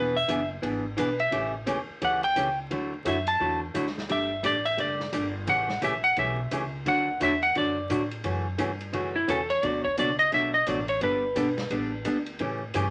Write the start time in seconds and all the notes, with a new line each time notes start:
Already playing: E1 E3 B3 D4 G#4 B4
0.16 E5
0.28 F#1 E3 B3 D4 G#4, hi-hat pedal, ride
0.62 G#1 E3 B3 D4 G#4, ride
0.97 B1 E3 B3 D4 G#4 B4, hi-hat pedal, ride
1.19 E5, ride
1.31 A1 C#3 E3 A3 C#4 G4, ride
1.66 E2 C#3 E3 A3 C#4 G4, hi-hat pedal, ride
1.89 muted upright bass stroke
2.02 D2 C#3 E3 A3 C#4 G4 F#5, ride
2.23 G5, ride
2.36 C#2 C#3 E3 A3 C#4 G4, hi-hat pedal, ride
2.71 D2 D3 F#3 A3 E4 F#4, ride
3.05 F#2 D3 F#3 A3 E4 F#4 E5, hi-hat pedal, ride
3.27 A5, ride
3.40 E2 D3 F#3 A3 E4 F#4
3.74 D2 D3 F#3 A3 E4 F#4, hi-hat pedal, ride
3.87 snare
3.98 snare
4.09 G1 G3 A3 D4 G4 E5, ride
4.43 A1 G3 A3 D4 G4 D5, hi-hat pedal, ride
4.65 E5, ride
4.78 F#1 G3 A3 D4 G4 D5, ride
5.00 snare
5.12 G1 G3 A3 D4 G4, hi-hat pedal, ride
5.47 A1 C#3 E3 A3 C#4 G4 F#5, ride
5.69 snare
5.82 A#1 C#3 E3 A3 C#4 G4 E5, hi-hat pedal, ride
6.04 F#5, ride
6.16 B1 C#3 E3 A3 C#4 G4 E5, ride
6.51 C#2 C#3 E3 A3 C#4 G4, hi-hat pedal, ride
6.86 D2 D3 F#3 A3 D4 F#4 F#5, ride
7.20 E2 D3 F#3 A3 D4 F#4 E5, hi-hat pedal, ride
7.42 F#5, ride
7.55 F#2 D3 F#3 A3 D4 F#4 D5, ride
7.90 A2 D3 F#3 A3 D4 F#4, hi-hat pedal, ride
8.11 ride
8.24 F#2 C#3 E3 A3 C#4 F#4, ride
8.58 G2 C#3 E3 A3 C#4 F#4, hi-hat pedal, ride
8.81 ride
8.93 F#2 C#3 E3 A3 C#4 F#4, ride
9.16 E4
9.28 E2 C#3 E3 A3 C#4 F#4 A4, hi-hat pedal, ride
9.50 C#5, ride
9.63 D2 B2 F#3 A3 D4 F#4 D5, ride
9.84 C#5, kick
9.97 C#2 B2 F#3 A3 D4 F#4 D5, hi-hat pedal, ride
10.19 D#5, ride
10.32 B1 B2 F#3 A3 D4 F#4 E5, ride
10.54 D#5
10.67 A1 B2 F#3 A3 D4 F#4 D5, hi-hat pedal, ride
10.88 C#5, ride
11.01 G1 G3 B3 D4 A4 B4, ride
11.36 B1 G3 B3 D4 A4, hi-hat pedal, ride
11.58 snare, ride
11.70 A1 G3 B3 D4 A4, ride
12.05 D2 G3 B3 D4 A4, hi-hat pedal, ride
12.26 ride
12.39 A2 C#3 E3 A3 C#4 G4, ride
12.74 G2 C#3 E3 A3 C#4 G4, hi-hat pedal, ride